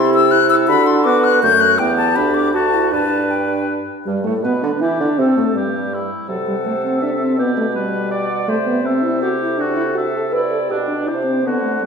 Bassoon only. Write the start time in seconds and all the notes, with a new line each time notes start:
Already playing: C3
0.69 D3
1.44 F#2
1.80 E2
2.17 D2
2.55 D2
2.92 G2
4.07 G2
4.26 A2
4.44 B2
4.64 D3
4.81 E3
5.00 D3
5.19 C3
5.37 A2
5.55 G2
6.29 C3
7.39 B2
8.49 C3
10.71 B2
11.08 C3
11.46 D3